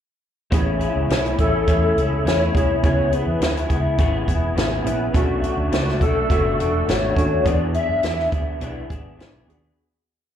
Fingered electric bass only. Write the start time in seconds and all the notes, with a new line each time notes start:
0.52 A1
0.96 C#2
1.09 B1
1.39 A1
1.68 E2
1.97 C#2
2.25 E2
2.55 C2
2.84 C#2
3.26 E2
3.40 D2
3.70 C#2
3.99 G#1
4.28 E1
4.56 G#1
4.85 A#1
5.14 B1
5.57 D2
5.71 C#2
6.01 B1
6.30 F#1
6.58 E1
6.88 G#1
7.16 D#2
7.45 E2
7.89 F#2
8.03 E2
8.32 D2
8.61 B1
8.90 G#1
9.33 B1
9.47 D#2